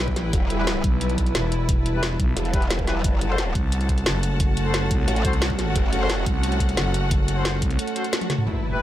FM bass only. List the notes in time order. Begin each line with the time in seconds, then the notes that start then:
Already playing: B1
0.84 B1
1.35 E1
2.20 B1
3.55 C2
4.06 F#1
4.91 C2
5.25 C2
6.26 C2
6.77 F#1
7.62 C2